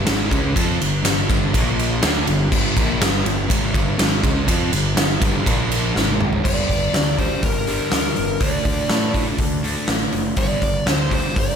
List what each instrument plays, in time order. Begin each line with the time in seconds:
0.05 picked electric bass G#1, distorted electric guitar G#2 D#3 G#3, snare, ride
0.30 picked electric bass C#2, distorted electric guitar C#3 G#3 C#4, kick, ride
0.54 picked electric bass F2, distorted electric guitar F3 C4 F4, kick, ride
0.80 picked electric bass G1, distorted electric guitar G2 D3, ride
1.04 picked electric bass G1, distorted electric guitar G2 D3, snare, ride
1.28 picked electric bass G1, distorted electric guitar G2 D3 G3, kick, ride
1.52 picked electric bass A#1, distorted electric guitar A#2 F3 A#3, kick, ride
1.79 ride
2.02 picked electric bass D2, distorted electric guitar D3 A3 D4, snare, ride
2.27 picked electric bass G1, distorted electric guitar G2 D3, ride
2.52 picked electric bass G1, distorted electric guitar G2 D3 G3, kick, crash
2.76 picked electric bass A#1, distorted electric guitar A#2 F3 A#3, kick, ride
3.01 picked electric bass G1, distorted electric guitar G2 D3 G3, snare, ride
3.25 picked electric bass G1, distorted electric guitar G2 D3, ride
3.48 picked electric bass G#1, distorted electric guitar G#2 D#3 G#3, kick, ride
3.73 picked electric bass G1, distorted electric guitar G2 D3 G3, kick, ride
3.98 picked electric bass G#1, distorted electric guitar G#2 D#3 G#3, snare, ride
4.22 picked electric bass C#2, distorted electric guitar C#3 G#3 C#4, kick, ride
4.47 picked electric bass F2, distorted electric guitar F3 C4 F4, kick, ride
4.72 picked electric bass G1, distorted electric guitar G2 D3, ride
4.96 picked electric bass G1, distorted electric guitar G2 D3, snare, ride
5.21 picked electric bass G1, distorted electric guitar G2 D3 G3, kick, ride
5.45 picked electric bass A#1, distorted electric guitar A#2 F3 A#3, kick, ride
5.72 ride
5.95 picked electric bass G#1, distorted electric guitar G#2 D#3 G#3, snare
6.08 high tom
6.21 mid tom
6.33 floor tom
6.43 picked electric bass G1, distorted electric guitar G2 D3 G3, lead electric guitar D5, kick, crash
6.69 picked electric bass G1, distorted electric guitar G2 D3, kick, open hi-hat
6.93 picked electric bass D2, distorted electric guitar G2 D3, snare, open hi-hat
7.18 distorted electric guitar G2 D3 G3, lead electric guitar C5, kick, open hi-hat
7.42 picked electric bass G1, distorted electric guitar G2 D3, lead electric guitar A#4, kick, open hi-hat
7.66 distorted electric guitar G2 D3 G3, open hi-hat
7.90 picked electric bass D2, distorted electric guitar G2 D3, snare, open hi-hat
8.15 picked electric bass G1, distorted electric guitar G2 D3, open hi-hat
8.40 picked electric bass D2, distorted electric guitar D3 A3 D4, lead electric guitar D5, kick, open hi-hat
8.64 picked electric bass D2, distorted electric guitar D3 A3 D4, kick, open hi-hat
8.89 picked electric bass A2, distorted electric guitar D3 A3, snare, open hi-hat
9.13 distorted electric guitar D3 A3 D4, kick, open hi-hat
9.38 picked electric bass D2, distorted electric guitar D3 A3, kick, open hi-hat
9.63 distorted electric guitar D3 A3 D4, open hi-hat
9.87 picked electric bass A1, distorted electric guitar D3 A3, snare, open hi-hat
10.12 picked electric bass F#1, distorted electric guitar D3 A3, open hi-hat
10.36 picked electric bass G1, distorted electric guitar G2 D3 G3, lead electric guitar D5, kick, open hi-hat
10.62 picked electric bass G1, distorted electric guitar G2 D3, kick, open hi-hat
10.86 picked electric bass D2, distorted electric guitar G2 D3, snare, open hi-hat
10.94 lead electric guitar C5
11.10 distorted electric guitar G2 D3 G3, lead electric guitar C5, kick, open hi-hat
11.35 picked electric bass G1, distorted electric guitar G2 D3, kick, open hi-hat
11.39 lead electric guitar D5